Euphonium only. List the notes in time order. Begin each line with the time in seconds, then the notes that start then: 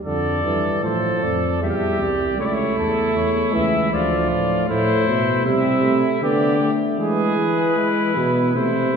0.05 D3
0.44 E3
0.84 F3
1.62 G3
2.38 A3
3.53 E3
3.92 F3
4.68 A3
5.45 G3
5.82 A3
6.22 B3
6.60 A3
7.00 G#3
7.37 E3
7.76 G#3
8.15 B3
8.54 A3
8.93 A3